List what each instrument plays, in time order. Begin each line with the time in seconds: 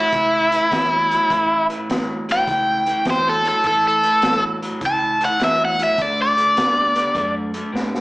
Already playing: clean electric guitar A2 F#3, overdriven electric guitar E4
0.12 fingered electric bass C#2, clean electric guitar A2 E3, kick, closed hi-hat
0.52 clean electric guitar A2 E3, closed hi-hat
0.71 fingered electric bass E2, clean electric guitar A2 F#3, kick, snare, closed hi-hat
1.11 clean electric guitar A2 F#3, closed hi-hat
1.30 fingered electric bass A1, clean electric guitar A2 E3, kick, closed hi-hat
1.70 clean electric guitar A2 E3, closed hi-hat
1.89 fingered electric bass A1, clean electric guitar A2 F#3, snare, closed hi-hat
2.29 clean electric guitar A2 F#3, overdriven electric guitar G5, snare, closed hi-hat
2.47 fingered electric bass C#2, clean electric guitar A2 E3, kick, closed hi-hat
2.86 clean electric guitar A2 E3, closed hi-hat
3.05 fingered electric bass E2, clean electric guitar A2 F#3, kick, snare, closed hi-hat
3.10 overdriven electric guitar C5
3.29 overdriven electric guitar A4
3.45 clean electric guitar A2 F#3, overdriven electric guitar A4, closed hi-hat
3.64 fingered electric bass A1, clean electric guitar A2 E3, overdriven electric guitar A4, kick, closed hi-hat
3.88 overdriven electric guitar A4
4.03 clean electric guitar A2 E3, closed hi-hat
4.22 fingered electric bass A1, clean electric guitar A2 F#3, snare, closed hi-hat
4.62 clean electric guitar A2 F#3, closed hi-hat
4.81 fingered electric bass C#2, clean electric guitar A2 E3, kick, closed hi-hat
4.86 overdriven electric guitar A5
5.21 clean electric guitar A2 E3, closed hi-hat
5.25 overdriven electric guitar F#5
5.40 fingered electric bass E2, clean electric guitar A2 F#3, kick, snare, closed hi-hat
5.44 overdriven electric guitar E5
5.65 overdriven electric guitar F#5
5.79 clean electric guitar A2 F#3, closed hi-hat
5.83 overdriven electric guitar E5
5.98 fingered electric bass D2, clean electric guitar D3 A3, overdriven electric guitar D5, kick, closed hi-hat
6.22 overdriven electric guitar D5
6.37 clean electric guitar D3 A3, closed hi-hat
6.57 fingered electric bass D2, clean electric guitar D3 B3, snare, closed hi-hat
6.96 clean electric guitar D3 B3, closed hi-hat
7.15 fingered electric bass F#2, clean electric guitar D3 A3, kick, closed hi-hat
7.54 clean electric guitar D3 A3, closed hi-hat
7.72 fingered electric bass A2, clean electric guitar D3 B3, snare
7.95 snare